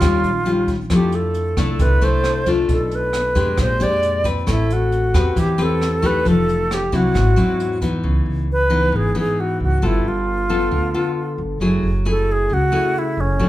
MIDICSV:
0, 0, Header, 1, 5, 480
1, 0, Start_track
1, 0, Tempo, 446097
1, 976, Time_signature, 4, 2, 24, 8
1, 14514, End_track
2, 0, Start_track
2, 0, Title_t, "Alto flute"
2, 0, Program_c, 0, 73
2, 0, Note_on_c, 0, 65, 91
2, 749, Note_off_c, 0, 65, 0
2, 1006, Note_on_c, 0, 67, 75
2, 1238, Note_on_c, 0, 69, 80
2, 1255, Note_off_c, 0, 67, 0
2, 1951, Note_on_c, 0, 71, 96
2, 1967, Note_off_c, 0, 69, 0
2, 2196, Note_on_c, 0, 72, 86
2, 2213, Note_off_c, 0, 71, 0
2, 2666, Note_off_c, 0, 72, 0
2, 2939, Note_on_c, 0, 69, 75
2, 3175, Note_on_c, 0, 71, 77
2, 3191, Note_off_c, 0, 69, 0
2, 3875, Note_off_c, 0, 71, 0
2, 3889, Note_on_c, 0, 72, 90
2, 4120, Note_on_c, 0, 74, 91
2, 4136, Note_off_c, 0, 72, 0
2, 4587, Note_off_c, 0, 74, 0
2, 4842, Note_on_c, 0, 64, 76
2, 5088, Note_on_c, 0, 66, 80
2, 5104, Note_off_c, 0, 64, 0
2, 5799, Note_on_c, 0, 67, 88
2, 5815, Note_off_c, 0, 66, 0
2, 6055, Note_on_c, 0, 69, 88
2, 6071, Note_off_c, 0, 67, 0
2, 6521, Note_on_c, 0, 71, 89
2, 6537, Note_off_c, 0, 69, 0
2, 6746, Note_off_c, 0, 71, 0
2, 6769, Note_on_c, 0, 69, 96
2, 7252, Note_on_c, 0, 67, 84
2, 7268, Note_off_c, 0, 69, 0
2, 7486, Note_on_c, 0, 66, 84
2, 7502, Note_off_c, 0, 67, 0
2, 8428, Note_off_c, 0, 66, 0
2, 9167, Note_on_c, 0, 71, 84
2, 9641, Note_on_c, 0, 68, 85
2, 9658, Note_off_c, 0, 71, 0
2, 9866, Note_off_c, 0, 68, 0
2, 9889, Note_on_c, 0, 68, 78
2, 10116, Note_on_c, 0, 66, 75
2, 10132, Note_off_c, 0, 68, 0
2, 10343, Note_off_c, 0, 66, 0
2, 10363, Note_on_c, 0, 66, 78
2, 10609, Note_on_c, 0, 64, 80
2, 10625, Note_off_c, 0, 66, 0
2, 10846, Note_on_c, 0, 65, 72
2, 10862, Note_off_c, 0, 64, 0
2, 12268, Note_off_c, 0, 65, 0
2, 13024, Note_on_c, 0, 69, 84
2, 13254, Note_on_c, 0, 68, 88
2, 13270, Note_off_c, 0, 69, 0
2, 13487, Note_on_c, 0, 66, 87
2, 13503, Note_off_c, 0, 68, 0
2, 13971, Note_on_c, 0, 64, 85
2, 13987, Note_off_c, 0, 66, 0
2, 14207, Note_on_c, 0, 61, 81
2, 14223, Note_off_c, 0, 64, 0
2, 14514, Note_off_c, 0, 61, 0
2, 14514, End_track
3, 0, Start_track
3, 0, Title_t, "Nylon-string guitar"
3, 0, Program_c, 1, 24
3, 5, Note_on_c, 1, 51, 53
3, 6, Note_on_c, 1, 55, 53
3, 8, Note_on_c, 1, 61, 49
3, 16, Note_on_c, 1, 65, 56
3, 319, Note_off_c, 1, 55, 0
3, 322, Note_off_c, 1, 61, 0
3, 324, Note_off_c, 1, 65, 0
3, 488, Note_on_c, 1, 55, 51
3, 493, Note_on_c, 1, 61, 51
3, 494, Note_on_c, 1, 65, 55
3, 802, Note_off_c, 1, 55, 0
3, 802, Note_off_c, 1, 61, 0
3, 804, Note_off_c, 1, 65, 0
3, 947, Note_off_c, 1, 51, 0
3, 969, Note_on_c, 1, 53, 49
3, 976, Note_on_c, 1, 57, 53
3, 981, Note_on_c, 1, 62, 50
3, 984, Note_on_c, 1, 64, 53
3, 1657, Note_off_c, 1, 57, 0
3, 1657, Note_off_c, 1, 62, 0
3, 1661, Note_off_c, 1, 64, 0
3, 1692, Note_on_c, 1, 57, 58
3, 1699, Note_on_c, 1, 64, 61
3, 1700, Note_on_c, 1, 62, 58
3, 1910, Note_off_c, 1, 53, 0
3, 1930, Note_on_c, 1, 48, 49
3, 2137, Note_off_c, 1, 57, 0
3, 2138, Note_off_c, 1, 62, 0
3, 2139, Note_off_c, 1, 64, 0
3, 2168, Note_on_c, 1, 57, 57
3, 2174, Note_on_c, 1, 62, 55
3, 2177, Note_on_c, 1, 64, 60
3, 2614, Note_off_c, 1, 57, 0
3, 2615, Note_off_c, 1, 62, 0
3, 2618, Note_off_c, 1, 64, 0
3, 2651, Note_on_c, 1, 57, 53
3, 2656, Note_on_c, 1, 62, 55
3, 2663, Note_on_c, 1, 65, 62
3, 2868, Note_off_c, 1, 48, 0
3, 2893, Note_on_c, 1, 47, 51
3, 3575, Note_off_c, 1, 57, 0
3, 3576, Note_off_c, 1, 62, 0
3, 3580, Note_off_c, 1, 65, 0
3, 3607, Note_on_c, 1, 56, 55
3, 3612, Note_on_c, 1, 62, 59
3, 3617, Note_on_c, 1, 67, 54
3, 3829, Note_off_c, 1, 47, 0
3, 3845, Note_on_c, 1, 46, 54
3, 4052, Note_off_c, 1, 56, 0
3, 4054, Note_off_c, 1, 62, 0
3, 4057, Note_off_c, 1, 67, 0
3, 4088, Note_on_c, 1, 56, 56
3, 4095, Note_on_c, 1, 62, 54
3, 4099, Note_on_c, 1, 67, 62
3, 4532, Note_off_c, 1, 56, 0
3, 4536, Note_off_c, 1, 62, 0
3, 4538, Note_off_c, 1, 67, 0
3, 4564, Note_on_c, 1, 60, 62
3, 4574, Note_on_c, 1, 71, 68
3, 4785, Note_off_c, 1, 46, 0
3, 4806, Note_on_c, 1, 57, 54
3, 5489, Note_off_c, 1, 60, 0
3, 5495, Note_off_c, 1, 71, 0
3, 5533, Note_on_c, 1, 60, 56
3, 5539, Note_on_c, 1, 67, 57
3, 5540, Note_on_c, 1, 71, 60
3, 5745, Note_off_c, 1, 57, 0
3, 5773, Note_on_c, 1, 52, 52
3, 5974, Note_off_c, 1, 60, 0
3, 5976, Note_off_c, 1, 67, 0
3, 5978, Note_off_c, 1, 71, 0
3, 6005, Note_on_c, 1, 60, 63
3, 6009, Note_on_c, 1, 67, 56
3, 6011, Note_on_c, 1, 71, 64
3, 6450, Note_off_c, 1, 60, 0
3, 6451, Note_off_c, 1, 67, 0
3, 6453, Note_off_c, 1, 71, 0
3, 6482, Note_on_c, 1, 57, 58
3, 6487, Note_on_c, 1, 63, 56
3, 6495, Note_on_c, 1, 67, 61
3, 6708, Note_off_c, 1, 52, 0
3, 6728, Note_on_c, 1, 53, 53
3, 7408, Note_off_c, 1, 57, 0
3, 7411, Note_off_c, 1, 63, 0
3, 7412, Note_off_c, 1, 67, 0
3, 7449, Note_on_c, 1, 54, 57
3, 7454, Note_on_c, 1, 60, 55
3, 7459, Note_on_c, 1, 64, 56
3, 7665, Note_off_c, 1, 53, 0
3, 7685, Note_on_c, 1, 44, 50
3, 7891, Note_off_c, 1, 54, 0
3, 7894, Note_off_c, 1, 60, 0
3, 7896, Note_off_c, 1, 64, 0
3, 7923, Note_on_c, 1, 54, 57
3, 7929, Note_on_c, 1, 60, 54
3, 7931, Note_on_c, 1, 64, 60
3, 8368, Note_off_c, 1, 54, 0
3, 8370, Note_off_c, 1, 60, 0
3, 8372, Note_off_c, 1, 64, 0
3, 8410, Note_on_c, 1, 52, 51
3, 8414, Note_on_c, 1, 59, 59
3, 8418, Note_on_c, 1, 63, 57
3, 8623, Note_off_c, 1, 44, 0
3, 8646, Note_on_c, 1, 49, 51
3, 9111, Note_off_c, 1, 52, 0
3, 9112, Note_off_c, 1, 59, 0
3, 9114, Note_off_c, 1, 63, 0
3, 9359, Note_on_c, 1, 52, 58
3, 9363, Note_on_c, 1, 59, 53
3, 9367, Note_on_c, 1, 63, 59
3, 9584, Note_off_c, 1, 49, 0
3, 9601, Note_on_c, 1, 44, 51
3, 9806, Note_off_c, 1, 52, 0
3, 9807, Note_off_c, 1, 59, 0
3, 9810, Note_off_c, 1, 63, 0
3, 9843, Note_on_c, 1, 52, 56
3, 9847, Note_on_c, 1, 59, 54
3, 9852, Note_on_c, 1, 63, 55
3, 10528, Note_off_c, 1, 52, 0
3, 10530, Note_off_c, 1, 59, 0
3, 10532, Note_off_c, 1, 63, 0
3, 10541, Note_off_c, 1, 44, 0
3, 10567, Note_on_c, 1, 55, 50
3, 10568, Note_on_c, 1, 59, 46
3, 10572, Note_on_c, 1, 65, 56
3, 10577, Note_on_c, 1, 69, 51
3, 11250, Note_off_c, 1, 59, 0
3, 11251, Note_off_c, 1, 65, 0
3, 11255, Note_off_c, 1, 69, 0
3, 11292, Note_on_c, 1, 59, 54
3, 11298, Note_on_c, 1, 65, 55
3, 11298, Note_on_c, 1, 69, 58
3, 11505, Note_off_c, 1, 55, 0
3, 11529, Note_on_c, 1, 50, 52
3, 11733, Note_off_c, 1, 59, 0
3, 11734, Note_off_c, 1, 65, 0
3, 11736, Note_off_c, 1, 69, 0
3, 11774, Note_on_c, 1, 59, 48
3, 11777, Note_on_c, 1, 65, 57
3, 11780, Note_on_c, 1, 69, 55
3, 12454, Note_off_c, 1, 59, 0
3, 12454, Note_off_c, 1, 65, 0
3, 12457, Note_off_c, 1, 69, 0
3, 12466, Note_off_c, 1, 50, 0
3, 12491, Note_on_c, 1, 54, 51
3, 12493, Note_on_c, 1, 57, 46
3, 12496, Note_on_c, 1, 64, 48
3, 12501, Note_on_c, 1, 68, 60
3, 12800, Note_off_c, 1, 57, 0
3, 12802, Note_off_c, 1, 64, 0
3, 12804, Note_off_c, 1, 68, 0
3, 12970, Note_on_c, 1, 57, 52
3, 12975, Note_on_c, 1, 64, 51
3, 12980, Note_on_c, 1, 68, 58
3, 13427, Note_off_c, 1, 54, 0
3, 13446, Note_on_c, 1, 49, 49
3, 13447, Note_off_c, 1, 57, 0
3, 13449, Note_off_c, 1, 64, 0
3, 13452, Note_off_c, 1, 68, 0
3, 13686, Note_on_c, 1, 57, 54
3, 13692, Note_on_c, 1, 64, 53
3, 13694, Note_on_c, 1, 68, 56
3, 14370, Note_off_c, 1, 57, 0
3, 14372, Note_off_c, 1, 64, 0
3, 14374, Note_off_c, 1, 68, 0
3, 14384, Note_off_c, 1, 49, 0
3, 14412, Note_on_c, 1, 47, 51
3, 14413, Note_on_c, 1, 54, 50
3, 14417, Note_on_c, 1, 57, 54
3, 14423, Note_on_c, 1, 62, 56
3, 14514, Note_off_c, 1, 47, 0
3, 14514, Note_off_c, 1, 54, 0
3, 14514, Note_off_c, 1, 57, 0
3, 14514, Note_off_c, 1, 62, 0
3, 14514, End_track
4, 0, Start_track
4, 0, Title_t, "Upright bass"
4, 0, Program_c, 2, 32
4, 12, Note_on_c, 2, 39, 93
4, 237, Note_off_c, 2, 39, 0
4, 251, Note_on_c, 2, 34, 76
4, 931, Note_off_c, 2, 34, 0
4, 968, Note_on_c, 2, 41, 85
4, 1649, Note_off_c, 2, 41, 0
4, 1690, Note_on_c, 2, 36, 70
4, 1916, Note_off_c, 2, 36, 0
4, 1931, Note_on_c, 2, 36, 88
4, 2156, Note_off_c, 2, 36, 0
4, 2166, Note_on_c, 2, 36, 70
4, 2848, Note_off_c, 2, 36, 0
4, 2889, Note_on_c, 2, 35, 82
4, 3568, Note_off_c, 2, 35, 0
4, 3612, Note_on_c, 2, 41, 78
4, 3836, Note_off_c, 2, 41, 0
4, 3849, Note_on_c, 2, 34, 97
4, 4075, Note_off_c, 2, 34, 0
4, 4087, Note_on_c, 2, 41, 71
4, 4767, Note_off_c, 2, 41, 0
4, 4807, Note_on_c, 2, 33, 85
4, 5486, Note_off_c, 2, 33, 0
4, 5530, Note_on_c, 2, 40, 79
4, 5754, Note_off_c, 2, 40, 0
4, 5771, Note_on_c, 2, 40, 95
4, 5994, Note_off_c, 2, 40, 0
4, 6011, Note_on_c, 2, 40, 79
4, 6688, Note_off_c, 2, 40, 0
4, 6729, Note_on_c, 2, 29, 79
4, 7406, Note_off_c, 2, 29, 0
4, 7454, Note_on_c, 2, 36, 80
4, 7675, Note_off_c, 2, 36, 0
4, 7693, Note_on_c, 2, 32, 98
4, 7915, Note_off_c, 2, 32, 0
4, 7932, Note_on_c, 2, 40, 70
4, 8608, Note_off_c, 2, 40, 0
4, 8650, Note_on_c, 2, 37, 83
4, 8873, Note_off_c, 2, 37, 0
4, 8887, Note_on_c, 2, 37, 72
4, 9565, Note_off_c, 2, 37, 0
4, 9600, Note_on_c, 2, 32, 79
4, 9827, Note_off_c, 2, 32, 0
4, 10332, Note_on_c, 2, 37, 70
4, 10554, Note_off_c, 2, 37, 0
4, 10572, Note_on_c, 2, 31, 78
4, 10794, Note_off_c, 2, 31, 0
4, 10806, Note_on_c, 2, 31, 68
4, 11485, Note_off_c, 2, 31, 0
4, 11526, Note_on_c, 2, 38, 83
4, 11751, Note_off_c, 2, 38, 0
4, 12247, Note_on_c, 2, 31, 73
4, 12472, Note_off_c, 2, 31, 0
4, 12482, Note_on_c, 2, 30, 75
4, 12709, Note_off_c, 2, 30, 0
4, 12732, Note_on_c, 2, 30, 72
4, 13408, Note_off_c, 2, 30, 0
4, 13457, Note_on_c, 2, 37, 85
4, 13677, Note_off_c, 2, 37, 0
4, 14173, Note_on_c, 2, 30, 74
4, 14395, Note_off_c, 2, 30, 0
4, 14412, Note_on_c, 2, 35, 79
4, 14514, Note_off_c, 2, 35, 0
4, 14514, End_track
5, 0, Start_track
5, 0, Title_t, "Drums"
5, 14, Note_on_c, 9, 36, 52
5, 15, Note_on_c, 9, 37, 52
5, 15, Note_on_c, 9, 42, 55
5, 122, Note_off_c, 9, 36, 0
5, 123, Note_off_c, 9, 37, 0
5, 123, Note_off_c, 9, 42, 0
5, 257, Note_on_c, 9, 42, 40
5, 365, Note_off_c, 9, 42, 0
5, 494, Note_on_c, 9, 42, 40
5, 602, Note_off_c, 9, 42, 0
5, 729, Note_on_c, 9, 42, 39
5, 730, Note_on_c, 9, 36, 49
5, 836, Note_off_c, 9, 42, 0
5, 837, Note_off_c, 9, 36, 0
5, 968, Note_on_c, 9, 37, 52
5, 968, Note_on_c, 9, 42, 53
5, 969, Note_on_c, 9, 36, 50
5, 1076, Note_off_c, 9, 37, 0
5, 1076, Note_off_c, 9, 42, 0
5, 1077, Note_off_c, 9, 36, 0
5, 1206, Note_on_c, 9, 42, 37
5, 1313, Note_off_c, 9, 42, 0
5, 1445, Note_on_c, 9, 42, 42
5, 1553, Note_off_c, 9, 42, 0
5, 1689, Note_on_c, 9, 37, 50
5, 1689, Note_on_c, 9, 42, 39
5, 1690, Note_on_c, 9, 36, 52
5, 1796, Note_off_c, 9, 37, 0
5, 1796, Note_off_c, 9, 42, 0
5, 1797, Note_off_c, 9, 36, 0
5, 1929, Note_on_c, 9, 42, 48
5, 1930, Note_on_c, 9, 36, 55
5, 2037, Note_off_c, 9, 42, 0
5, 2038, Note_off_c, 9, 36, 0
5, 2169, Note_on_c, 9, 42, 37
5, 2277, Note_off_c, 9, 42, 0
5, 2408, Note_on_c, 9, 37, 51
5, 2408, Note_on_c, 9, 42, 37
5, 2516, Note_off_c, 9, 37, 0
5, 2516, Note_off_c, 9, 42, 0
5, 2647, Note_on_c, 9, 42, 39
5, 2650, Note_on_c, 9, 36, 48
5, 2755, Note_off_c, 9, 42, 0
5, 2758, Note_off_c, 9, 36, 0
5, 2891, Note_on_c, 9, 42, 50
5, 2892, Note_on_c, 9, 36, 54
5, 2998, Note_off_c, 9, 42, 0
5, 2999, Note_off_c, 9, 36, 0
5, 3134, Note_on_c, 9, 42, 37
5, 3242, Note_off_c, 9, 42, 0
5, 3370, Note_on_c, 9, 37, 53
5, 3370, Note_on_c, 9, 42, 43
5, 3477, Note_off_c, 9, 37, 0
5, 3477, Note_off_c, 9, 42, 0
5, 3611, Note_on_c, 9, 36, 48
5, 3611, Note_on_c, 9, 42, 42
5, 3718, Note_off_c, 9, 42, 0
5, 3719, Note_off_c, 9, 36, 0
5, 3847, Note_on_c, 9, 37, 55
5, 3847, Note_on_c, 9, 42, 53
5, 3850, Note_on_c, 9, 36, 52
5, 3955, Note_off_c, 9, 37, 0
5, 3955, Note_off_c, 9, 42, 0
5, 3957, Note_off_c, 9, 36, 0
5, 4095, Note_on_c, 9, 42, 42
5, 4203, Note_off_c, 9, 42, 0
5, 4332, Note_on_c, 9, 42, 39
5, 4440, Note_off_c, 9, 42, 0
5, 4571, Note_on_c, 9, 36, 49
5, 4572, Note_on_c, 9, 42, 40
5, 4678, Note_off_c, 9, 36, 0
5, 4680, Note_off_c, 9, 42, 0
5, 4811, Note_on_c, 9, 36, 54
5, 4813, Note_on_c, 9, 37, 58
5, 4813, Note_on_c, 9, 42, 57
5, 4918, Note_off_c, 9, 36, 0
5, 4920, Note_off_c, 9, 37, 0
5, 4920, Note_off_c, 9, 42, 0
5, 5060, Note_on_c, 9, 42, 42
5, 5168, Note_off_c, 9, 42, 0
5, 5293, Note_on_c, 9, 42, 42
5, 5401, Note_off_c, 9, 42, 0
5, 5532, Note_on_c, 9, 36, 49
5, 5536, Note_on_c, 9, 37, 57
5, 5536, Note_on_c, 9, 42, 39
5, 5640, Note_off_c, 9, 36, 0
5, 5643, Note_off_c, 9, 37, 0
5, 5643, Note_off_c, 9, 42, 0
5, 5771, Note_on_c, 9, 36, 53
5, 5773, Note_on_c, 9, 42, 48
5, 5878, Note_off_c, 9, 36, 0
5, 5881, Note_off_c, 9, 42, 0
5, 6016, Note_on_c, 9, 42, 38
5, 6123, Note_off_c, 9, 42, 0
5, 6257, Note_on_c, 9, 37, 48
5, 6257, Note_on_c, 9, 42, 37
5, 6365, Note_off_c, 9, 37, 0
5, 6365, Note_off_c, 9, 42, 0
5, 6491, Note_on_c, 9, 36, 49
5, 6494, Note_on_c, 9, 42, 36
5, 6599, Note_off_c, 9, 36, 0
5, 6602, Note_off_c, 9, 42, 0
5, 6733, Note_on_c, 9, 36, 54
5, 6735, Note_on_c, 9, 42, 47
5, 6840, Note_off_c, 9, 36, 0
5, 6843, Note_off_c, 9, 42, 0
5, 6984, Note_on_c, 9, 42, 37
5, 7091, Note_off_c, 9, 42, 0
5, 7221, Note_on_c, 9, 37, 60
5, 7221, Note_on_c, 9, 42, 39
5, 7329, Note_off_c, 9, 37, 0
5, 7329, Note_off_c, 9, 42, 0
5, 7454, Note_on_c, 9, 36, 47
5, 7456, Note_on_c, 9, 42, 37
5, 7562, Note_off_c, 9, 36, 0
5, 7564, Note_off_c, 9, 42, 0
5, 7693, Note_on_c, 9, 36, 52
5, 7697, Note_on_c, 9, 37, 52
5, 7697, Note_on_c, 9, 42, 50
5, 7800, Note_off_c, 9, 36, 0
5, 7804, Note_off_c, 9, 37, 0
5, 7804, Note_off_c, 9, 42, 0
5, 7933, Note_on_c, 9, 42, 41
5, 8040, Note_off_c, 9, 42, 0
5, 8176, Note_on_c, 9, 42, 41
5, 8283, Note_off_c, 9, 42, 0
5, 8412, Note_on_c, 9, 36, 47
5, 8414, Note_on_c, 9, 42, 42
5, 8519, Note_off_c, 9, 36, 0
5, 8522, Note_off_c, 9, 42, 0
5, 14514, End_track
0, 0, End_of_file